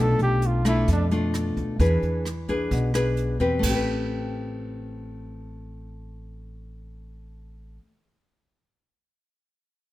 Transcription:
0.00 0.17 B1 medium
0.00 0.85 B2 soft
0.00 0.61 A3 medium
0.00 0.61 D4 medium
0.00 0.61 F4 medium
0.00 0.21 A4 medium
0.19 0.84 B1 medium
0.19 0.48 G4 medium
0.19 closed hi-hat soft
0.42 closed hi-hat soft
0.47 0.67 F4 medium
0.65 1.07 A3 medium
0.65 1.07 D4 medium
0.65 0.88 E4 medium
0.65 1.07 F4 medium
0.65 kick soft
0.65 cross-stick medium
0.65 closed hi-hat soft
0.88 1.53 F2 medium
0.88 1.78 B2 medium
0.88 kick medium
0.88 closed hi-hat soft
0.92 1.05 D4 medium
1.11 1.76 A3 medium
1.11 1.76 D4 medium
1.11 1.76 F4 soft
1.11 closed hi-hat soft
1.34 cross-stick soft
1.34 closed hi-hat soft
1.57 1.78 D2 medium
1.57 kick soft
1.57 closed hi-hat soft
1.80 2.01 E2 loud
1.80 2.69 E3 medium
1.80 2.25 D4 soft
1.80 2.25 G#4 soft
1.80 2.26 B4 medium
1.80 kick medium
1.80 closed hi-hat soft
2.02 2.67 E2 medium
2.02 closed hi-hat soft
2.25 cross-stick medium
2.25 closed hi-hat soft
2.48 2.91 D4 medium
2.48 2.91 G#4 medium
2.48 2.91 B4 medium
2.48 kick soft
2.48 closed hi-hat soft
2.71 3.36 B1 medium
2.71 3.61 B2 soft
2.71 kick medium
2.71 closed hi-hat soft
2.94 3.36 D4 medium
2.94 3.37 G#4 medium
2.94 3.37 B4 medium
2.94 cross-stick medium
2.94 closed hi-hat soft
3.17 closed hi-hat soft
3.40 3.61 E2 medium
3.40 3.64 C4 medium
3.40 3.68 G4 soft
3.40 3.73 B4 medium
3.40 kick soft
3.40 closed hi-hat soft
3.59 7.77 A1 medium
3.59 7.77 A3 soft
3.59 kick medium
3.63 7.83 C4 soft
3.63 crash soft
3.70 7.88 G4 medium
3.74 7.92 B4 soft

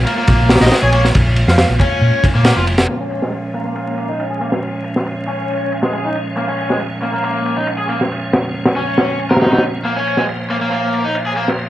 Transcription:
0.00 2.85 G#3 medium
0.00 2.85 A#3 medium
0.00 2.87 F4 medium
0.06 0.12 A#3 medium
0.06 ride medium
0.18 0.27 A#3 medium
0.27 0.56 A#1 medium
0.27 0.60 A#3 loud
0.27 kick loud
0.27 ride medium
0.49 snare medium
0.49 ride medium
0.56 snare medium
0.56 ride medium
0.61 0.69 A#1 medium
0.61 0.71 D#4 medium
0.61 0.73 D#5 medium
0.61 snare medium
0.61 ride medium
0.66 snare medium
0.66 ride medium
0.71 snare loud
0.71 ride medium
0.82 1.10 A#1 medium
0.82 0.89 G#4 medium
0.82 0.89 C#5 medium
0.93 1.03 A#3 medium
0.93 1.00 C#5 medium
0.93 ride medium
1.05 snare soft
1.15 1.43 A#1 loud
1.15 kick loud
1.15 ride medium
1.36 ride medium
1.47 1.64 F2 medium
1.47 1.54 F5 medium
1.47 snare soft
1.58 1.65 F5 medium
1.58 snare loud
1.58 ride medium
1.69 1.77 A#1 loud
1.80 2.22 C#4 loud
1.80 kick medium
1.80 ride medium
2.01 2.10 A#2 medium
2.24 kick medium
2.24 ride medium
2.35 2.51 A#2 medium
2.35 2.44 A#3 medium
2.45 2.55 A#3 medium
2.45 snare loud
2.45 ride medium
2.56 2.84 F1 medium
2.56 2.62 F4 medium
2.67 ride medium
2.78 snare loud
2.78 ride medium
2.89 11.69 A#2 medium
2.89 11.69 F3 medium
2.89 9.80 G#3 medium
2.89 2.99 A#3 medium
2.89 9.83 C#4 medium
2.89 ride medium
3.00 3.21 C#4 medium
3.11 ride medium
3.22 3.28 G#3 medium
3.22 snare soft
3.32 ride medium
3.54 3.60 A#3 medium
3.54 ride medium
3.66 3.74 A#3 medium
3.75 4.08 A#3 medium
3.75 ride medium
3.98 ride medium
4.09 4.19 D#4 medium
4.19 ride medium
4.31 4.36 G#4 medium
4.41 4.51 A#3 medium
4.41 ride medium
4.52 snare soft
4.63 ride medium
4.84 ride medium
4.96 snare soft
5.06 ride medium
5.28 5.70 C#4 medium
5.28 ride medium
5.50 ride medium
5.72 ride medium
5.83 5.92 G#3 medium
5.83 snare soft
5.93 6.03 G#4 medium
5.93 ride medium
6.05 6.15 D#4 medium
6.15 ride medium
6.37 6.47 A#3 medium
6.37 ride medium
6.48 6.69 C#4 medium
6.58 ride medium
6.70 6.75 G#3 medium
6.70 snare soft
6.80 ride medium
7.02 7.08 A#3 medium
7.02 ride medium
7.14 7.23 A#3 medium
7.24 7.56 A#3 medium
7.24 ride medium
7.46 ride medium
7.57 7.67 D#4 medium
7.67 ride medium
7.78 7.84 G#4 medium
7.89 7.99 A#3 medium
7.89 ride medium
8.01 snare soft
8.12 ride medium
8.33 snare loud
8.33 ride medium
8.54 ride medium
8.65 snare loud
8.65 ride medium
8.76 9.18 C#4 medium
8.87 ride medium
8.97 snare medium
8.97 ride medium
9.19 ride medium
9.31 9.36 A#4 medium
9.31 snare medium
9.31 ride medium
9.36 snare medium
9.36 ride medium
9.41 9.52 D#4 medium
9.41 snare medium
9.41 ride medium
9.46 snare medium
9.46 ride medium
9.52 9.62 D#4 medium
9.52 snare medium
9.52 ride medium
9.58 snare medium
9.58 ride medium
9.64 ride medium
9.84 11.69 A#3 medium
9.84 9.95 A#3 medium
9.84 11.69 C5 medium
9.84 ride medium
9.96 10.17 C#4 medium
10.07 ride medium
10.17 10.23 G#3 medium
10.17 snare soft
10.29 ride medium
10.50 10.56 A#3 medium
10.50 ride medium
10.61 10.70 A#3 medium
10.71 11.03 A#3 medium
10.71 ride medium
10.94 ride medium
11.05 11.14 D#4 medium
11.15 ride medium
11.27 11.32 G#4 medium
11.36 11.47 A#3 medium
11.36 ride medium
11.48 snare soft
11.59 ride medium

